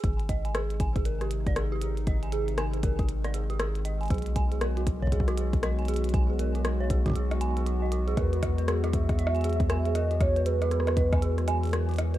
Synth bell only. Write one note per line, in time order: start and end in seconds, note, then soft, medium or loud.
0.04 0.11 G#4 medium
0.29 0.41 D#5 medium
0.45 0.54 G#5 medium
0.55 0.67 G#4 loud
0.80 0.87 G#5 medium
0.96 1.03 G#4 medium
1.05 1.13 A#4 medium
1.21 1.29 G4 medium
1.47 1.51 D5 loud
1.56 1.63 G#4 medium
1.72 1.79 G4 loud
1.82 1.89 G#4 medium
2.07 2.19 D#5 medium
2.23 2.32 G#5 medium
2.32 2.45 G#4 medium
2.58 2.65 G#5 loud
2.74 2.81 G#4 medium
2.83 2.91 A#4 medium
2.99 3.06 G4 medium
3.25 3.29 D5 loud
3.34 3.41 G#4 medium
3.50 3.57 G4 loud
3.60 3.67 G#4 medium
3.85 3.97 D#5 medium
4.01 4.10 G#5 medium
4.10 4.22 G#4 loud
4.36 4.43 G#5 medium
4.52 4.59 G#4 medium
4.61 4.68 A#4 medium
4.77 4.84 F#4 medium
5.02 5.07 C#5 loud
5.12 5.19 G#4 medium
5.28 5.35 F#4 loud
5.37 5.45 G#4 medium
5.63 5.75 D#5 medium
5.79 5.88 G#5 medium
5.88 6.00 G#4 loud
6.14 6.21 G#5 loud
6.30 6.37 G#4 medium
6.39 6.46 A#4 medium
6.55 6.62 F#4 medium
6.80 6.85 C#5 loud
6.90 6.97 G#4 medium
7.06 7.13 F#4 medium
7.16 7.23 G#4 medium
7.41 7.53 G#5 loud
7.57 7.61 G#4 medium
7.66 7.78 F#4 medium
7.82 7.90 D#5 medium
7.92 7.99 F#4 loud
8.08 8.17 G#4 loud
8.17 8.24 A#4 medium
8.33 8.40 F#4 medium
8.58 8.66 B4 medium
8.68 8.75 G#4 medium
8.84 8.91 F#4 loud
8.93 9.01 G#4 medium
9.19 9.31 D#5 medium
9.35 9.44 G#5 medium
9.44 9.56 G#4 loud
9.70 9.77 G#5 loud
9.86 9.93 G#4 medium
9.95 10.02 A#4 medium
10.11 10.18 F#4 medium
10.36 10.44 B4 medium
10.46 10.53 G#4 medium
10.62 10.69 F#4 loud
10.71 10.79 G#4 medium
10.97 11.09 D#5 medium
11.12 11.22 G#5 medium
11.22 11.34 G#4 loud
11.48 11.55 G#5 loud
11.63 11.71 G#4 medium
11.73 11.80 A#4 medium
11.89 11.96 F#4 medium
12.14 12.18 B4 medium